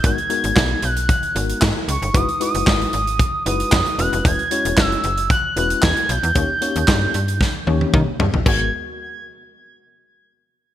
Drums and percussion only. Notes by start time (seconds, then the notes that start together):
0.04 kick, closed hi-hat
0.18 closed hi-hat
0.30 closed hi-hat
0.44 closed hi-hat
0.56 kick, snare, clap
0.82 closed hi-hat
0.97 closed hi-hat
1.09 kick, closed hi-hat
1.23 closed hi-hat
1.36 closed hi-hat
1.50 closed hi-hat
1.62 kick, snare, clap
1.89 closed hi-hat
2.02 closed hi-hat
2.14 kick, closed hi-hat
2.29 closed hi-hat
2.41 closed hi-hat
2.55 closed hi-hat
2.67 kick, snare, clap
2.82 closed hi-hat
2.93 closed hi-hat
3.07 closed hi-hat
3.19 kick, closed hi-hat
3.46 closed hi-hat
3.60 closed hi-hat
3.72 kick, snare, clap
3.86 closed hi-hat
3.99 closed hi-hat
4.13 closed hi-hat
4.25 kick, closed hi-hat
4.39 closed hi-hat
4.51 closed hi-hat
4.65 closed hi-hat
4.77 kick, snare, clap
4.92 closed hi-hat
5.04 closed hi-hat
5.18 closed hi-hat
5.30 kick, closed hi-hat
5.57 closed hi-hat
5.70 closed hi-hat
5.82 kick, snare, clap
5.97 closed hi-hat
6.09 closed hi-hat
6.23 closed hi-hat
6.35 kick, closed hi-hat
6.62 closed hi-hat
6.76 closed hi-hat
6.88 kick, snare, clap
7.14 closed hi-hat
7.28 closed hi-hat
7.41 kick, snare
7.67 high tom
7.81 high tom
7.94 kick, mid tom
8.20 floor tom
8.34 floor tom
8.46 kick, crash